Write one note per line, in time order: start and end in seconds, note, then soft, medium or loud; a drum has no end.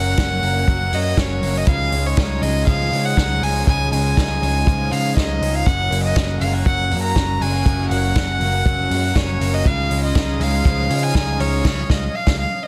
0.00 0.13 F#1 loud
0.00 1.68 F#2 medium
0.00 0.18 F#3 soft
0.00 0.67 F#3 medium
0.00 1.64 F#3 medium
0.00 0.18 A#3 soft
0.00 0.17 C#4 medium
0.00 0.18 C#4 medium
0.00 9.62 C#4 medium
0.00 0.18 F#4 medium
0.00 1.64 A#4 medium
0.00 0.96 F#5 loud
0.00 1.64 F#5 medium
0.17 0.38 F#1 loud
0.17 0.43 F#2 medium
0.17 0.43 C#3 medium
0.17 0.43 F#3 medium
0.17 0.43 A#3 medium
0.17 0.43 C#4 medium
0.17 0.42 F#4 medium
0.17 kick loud
0.17 snare loud
0.17 hi-hat pedal medium
0.17 ride medium
0.43 0.63 F#1 loud
0.43 0.67 F#3 soft
0.43 0.67 A#3 medium
0.43 0.68 C#4 medium
0.43 0.68 F#4 medium
0.43 open hi-hat medium
0.68 0.88 F#1 loud
0.68 0.93 F#3 medium
0.68 0.93 A#3 medium
0.68 0.93 C#4 medium
0.68 0.92 F#4 medium
0.68 kick loud
0.68 hi-hat pedal medium
0.68 ride medium
0.92 1.13 F#2 loud
0.92 1.17 F#3 soft
0.92 1.17 A#3 medium
0.92 1.18 C#4 soft
0.92 1.18 F#4 medium
0.92 1.22 D#5 loud
0.92 open hi-hat medium
1.17 1.38 F#1 loud
1.17 1.42 F#2 medium
1.17 1.43 C#3 medium
1.17 1.43 F#3 loud
1.17 1.43 A#3 medium
1.17 1.42 C#4 medium
1.17 1.41 F#4 loud
1.17 1.59 C#5 medium
1.17 kick loud
1.17 snare loud
1.17 hi-hat pedal medium
1.17 ride medium
1.42 1.62 F#1 medium
1.42 1.67 F#3 soft
1.42 1.68 A#3 medium
1.42 1.68 C#4 medium
1.42 1.67 F#4 medium
1.42 open hi-hat medium
1.58 1.69 D#5 medium
1.67 1.88 C#2 loud
1.67 5.63 C#3 loud
1.67 1.92 C#3 medium
1.67 1.92 F3 medium
1.67 1.93 G#3 medium
1.67 1.92 D#4 medium
1.67 1.91 F4 medium
1.67 5.63 D#5 medium
1.67 2.08 F5 loud
1.67 5.63 G#5 medium
1.67 kick loud
1.67 hi-hat pedal medium
1.67 ride medium
1.92 2.12 C#2 loud
1.92 2.17 G#3 soft
1.92 2.17 D#4 soft
1.92 2.17 F4 medium
1.92 open hi-hat medium
2.07 2.44 C#5 medium
2.17 2.38 C#2 loud
2.17 2.42 C#3 medium
2.17 2.42 F3 medium
2.17 2.43 G#3 medium
2.17 2.42 D#4 medium
2.17 2.41 F4 medium
2.17 kick loud
2.17 snare loud
2.17 hi-hat pedal medium
2.17 ride medium
2.42 2.62 C#2 loud
2.42 2.66 G#3 soft
2.42 2.67 D#4 medium
2.42 2.67 F4 medium
2.42 2.67 D#5 loud
2.42 open hi-hat medium
2.66 2.88 C#2 loud
2.66 2.92 F3 medium
2.66 2.92 G#3 medium
2.66 2.91 D#4 medium
2.66 2.89 F4 medium
2.66 3.06 F5 loud
2.66 kick loud
2.66 hi-hat pedal medium
2.66 ride medium
2.91 3.12 C#3 loud
2.91 3.16 G#3 soft
2.91 3.16 D#4 soft
2.91 3.16 F4 medium
2.91 open hi-hat medium
3.05 3.45 F#5 loud
3.16 3.38 C#2 loud
3.16 3.41 C#3 medium
3.16 3.42 F3 medium
3.16 3.42 G#3 medium
3.16 3.41 D#4 loud
3.16 3.39 F4 loud
3.16 kick loud
3.16 snare loud
3.16 hi-hat pedal medium
3.16 ride medium
3.40 3.62 C#2 medium
3.40 3.66 G#3 soft
3.40 3.66 D#4 soft
3.40 3.66 F4 medium
3.40 3.67 G#5 loud
3.40 open hi-hat medium
3.66 3.88 C#2 loud
3.66 3.91 C#3 medium
3.66 3.92 F3 medium
3.66 3.92 G#3 medium
3.66 3.90 D#4 medium
3.66 3.89 F4 medium
3.66 3.91 G#5 loud
3.66 kick loud
3.66 hi-hat pedal medium
3.66 ride medium
3.90 4.12 C#2 loud
3.90 4.16 G#3 soft
3.90 4.16 D#4 medium
3.90 4.16 F4 medium
3.90 4.93 G#5 medium
3.90 open hi-hat medium
4.16 4.38 C#2 loud
4.16 4.41 C#3 medium
4.16 4.42 F3 medium
4.16 4.41 G#3 medium
4.16 4.40 D#4 medium
4.16 4.38 F4 medium
4.16 kick loud
4.16 snare loud
4.16 hi-hat pedal medium
4.16 ride medium
4.40 4.62 C#2 loud
4.40 4.65 G#3 soft
4.40 4.65 D#4 soft
4.40 4.66 F4 soft
4.40 open hi-hat medium
4.65 4.87 C#2 loud
4.65 4.91 F3 medium
4.65 4.91 G#3 medium
4.65 4.90 D#4 medium
4.65 4.89 F4 medium
4.65 kick loud
4.65 hi-hat pedal medium
4.65 ride medium
4.90 5.12 C#3 medium
4.90 5.16 G#3 soft
4.90 5.16 D#4 soft
4.90 5.16 F4 medium
4.90 5.17 F5 loud
4.90 open hi-hat medium
5.15 5.37 C#2 loud
5.15 5.41 C#3 medium
5.15 5.41 F3 medium
5.15 5.42 G#3 loud
5.15 5.41 D#4 loud
5.15 5.40 F4 loud
5.15 5.57 D#5 medium
5.15 kick medium
5.15 snare loud
5.15 hi-hat pedal medium
5.15 ride medium
5.41 5.62 C#2 loud
5.41 5.67 G#3 soft
5.41 5.67 D#4 medium
5.41 5.66 F4 medium
5.41 open hi-hat medium
5.55 5.68 F5 loud
5.66 5.87 F#1 loud
5.66 5.91 F#2 medium
5.66 5.92 C#3 medium
5.66 9.61 F#3 medium
5.66 5.92 F#3 medium
5.66 5.92 A#3 medium
5.66 5.91 C#4 loud
5.66 5.90 F#4 medium
5.66 9.61 A#4 medium
5.66 9.61 F#5 medium
5.66 6.04 F#5 loud
5.66 kick loud
5.66 hi-hat pedal medium
5.66 ride medium
5.91 6.12 F#1 loud
5.91 6.15 F#3 soft
5.91 6.16 A#3 medium
5.91 6.16 C#4 soft
5.91 6.16 F#4 medium
5.91 open hi-hat medium
6.04 6.39 D#5 medium
6.16 6.41 F#2 medium
6.16 6.41 C#3 medium
6.16 6.42 F#3 medium
6.16 6.42 A#3 medium
6.16 6.41 C#4 medium
6.16 6.40 F#4 medium
6.16 kick loud
6.16 snare loud
6.16 hi-hat pedal medium
6.16 ride medium
6.41 6.62 F#1 loud
6.41 6.64 F#3 soft
6.41 6.53 G#3 medium
6.41 6.65 A#3 soft
6.41 6.66 C#4 medium
6.41 6.66 F#4 medium
6.41 6.52 F5 medium
6.41 open hi-hat medium
6.53 6.90 A#3 soft
6.65 6.93 F#1 loud
6.65 6.91 F#3 medium
6.65 6.91 A#3 medium
6.65 6.90 C#4 medium
6.65 7.01 F#5 loud
6.65 kick loud
6.65 hi-hat pedal medium
6.65 ride medium
6.90 7.12 F#2 loud
6.90 7.16 F#3 medium
6.90 7.16 A#3 soft
6.90 7.16 C#4 medium
6.90 7.16 F#4 medium
6.90 open hi-hat medium
7.03 7.43 A#5 loud
7.16 7.36 F#1 medium
7.16 7.41 F#2 medium
7.16 7.41 C#3 medium
7.16 7.42 F#3 medium
7.16 7.42 A#3 medium
7.16 7.41 C#4 medium
7.16 7.40 F#4 medium
7.16 kick loud
7.16 snare loud
7.16 hi-hat pedal medium
7.16 ride medium
7.41 7.62 F#1 medium
7.41 7.65 F#3 soft
7.41 7.53 G#3 medium
7.41 7.65 A#3 soft
7.41 7.65 C#4 medium
7.41 7.66 F#4 medium
7.41 7.90 G#5 loud
7.41 open hi-hat medium
7.53 7.89 A#3 medium
7.65 7.87 F#1 loud
7.65 7.91 F#2 medium
7.65 7.91 C#3 medium
7.65 7.91 F#3 medium
7.65 7.91 A#3 medium
7.65 7.90 C#4 medium
7.65 7.89 F#4 medium
7.65 kick loud
7.65 hi-hat pedal medium
7.65 ride medium
7.90 8.11 F#1 loud
7.90 8.15 F#3 soft
7.90 8.15 A#3 soft
7.90 8.16 C#4 soft
7.90 8.16 F#4 medium
7.90 9.18 F#5 loud
7.90 open hi-hat medium
8.15 8.37 F#1 loud
8.15 8.41 F#2 medium
8.15 8.41 C#3 medium
8.15 8.41 F#3 medium
8.15 8.41 A#3 medium
8.15 9.15 C#4 medium
8.15 8.39 F#4 medium
8.15 kick loud
8.15 snare loud
8.15 hi-hat pedal medium
8.15 ride medium
8.40 8.61 F#1 loud
8.40 8.64 F#3 soft
8.40 8.65 A#3 soft
8.40 8.66 C#4 medium
8.40 8.65 F#4 medium
8.40 open hi-hat medium
8.65 8.86 F#1 medium
8.65 8.91 F#3 medium
8.65 8.91 A#3 medium
8.65 8.91 C#4 medium
8.65 8.90 F#4 loud
8.65 kick loud
8.65 hi-hat pedal medium
8.65 ride medium
8.90 9.11 F#2 loud
8.90 9.15 F#3 medium
8.90 9.03 G#3 medium
8.90 9.15 A#3 medium
8.90 9.16 C#4 medium
8.90 9.16 F#4 medium
8.90 open hi-hat medium
9.03 9.39 A#3 medium
9.15 9.36 F#1 loud
9.15 9.40 F#2 medium
9.15 9.41 C#3 medium
9.15 9.41 F#3 medium
9.15 9.41 A#3 medium
9.15 9.40 C#4 medium
9.15 9.39 F#4 loud
9.15 9.55 C#5 medium
9.15 kick loud
9.15 snare loud
9.15 hi-hat pedal medium
9.15 ride medium
9.40 9.61 F#1 medium
9.40 9.65 F#3 soft
9.40 9.65 A#3 soft
9.40 9.66 C#4 medium
9.40 9.65 F#4 medium
9.40 open hi-hat medium
9.54 9.68 D#5 medium
9.65 9.86 C#2 loud
9.65 9.90 C#3 medium
9.65 12.68 C#3 medium
9.65 9.91 F3 medium
9.65 9.91 G#3 medium
9.65 12.68 C#4 medium
9.65 9.90 D#4 medium
9.65 9.88 F4 medium
9.65 12.68 D#5 medium
9.65 12.68 F5 medium
9.65 10.04 F5 loud
9.65 kick loud
9.65 hi-hat pedal medium
9.65 ride medium
9.90 10.11 C#2 loud
9.90 10.14 G#3 soft
9.90 10.15 D#4 soft
9.90 10.15 F4 medium
9.90 open hi-hat medium
10.04 10.44 D#5 medium
10.14 10.36 C#2 loud
10.14 10.40 C#3 medium
10.14 10.40 F3 medium
10.14 10.41 G#3 medium
10.14 10.40 D#4 medium
10.14 10.38 F4 medium
10.14 kick loud
10.14 snare loud
10.14 hi-hat pedal medium
10.14 ride medium
10.39 10.60 C#2 loud
10.39 10.64 G#3 soft
10.39 10.65 D#4 medium
10.39 10.65 F4 medium
10.39 11.05 F5 loud
10.39 open hi-hat medium
10.64 10.86 C#2 loud
10.64 10.90 F3 medium
10.64 10.90 G#3 medium
10.64 10.89 D#4 medium
10.64 10.87 F4 medium
10.64 kick loud
10.64 hi-hat pedal medium
10.64 ride medium
10.88 11.10 C#3 loud
10.88 11.14 G#3 medium
10.88 11.14 D#4 medium
10.88 11.14 F4 medium
10.88 open hi-hat medium
11.03 11.41 G#5 loud
11.14 11.36 C#2 loud
11.14 11.40 C#3 medium
11.14 11.40 F3 medium
11.14 11.40 G#3 loud
11.14 11.39 D#4 medium
11.14 11.38 F4 loud
11.14 kick loud
11.14 snare loud
11.14 ride medium
11.39 11.60 C#2 medium
11.39 11.64 G#3 soft
11.39 11.64 D#4 medium
11.39 11.64 F4 medium
11.39 11.92 C#5 loud
11.39 open hi-hat medium
11.64 11.82 C#2 loud
11.64 11.81 C#3 loud
11.64 11.81 F3 medium
11.64 11.82 G#3 loud
11.64 11.82 D#4 loud
11.64 11.82 F4 loud
11.64 kick loud
11.64 snare loud
11.64 crash medium
11.89 12.07 C#2 loud
11.89 12.08 G#3 loud
11.89 12.07 D#4 loud
11.89 12.06 F4 medium
11.89 12.17 D#5 medium
11.89 kick loud
11.89 snare loud
12.15 12.39 F5 loud
12.27 12.44 C#2 loud
12.27 12.44 C#3 loud
12.27 12.45 F3 medium
12.27 12.45 G#3 loud
12.27 12.45 D#4 medium
12.27 12.45 F4 medium
12.27 kick loud
12.27 snare loud
12.40 12.63 F5 medium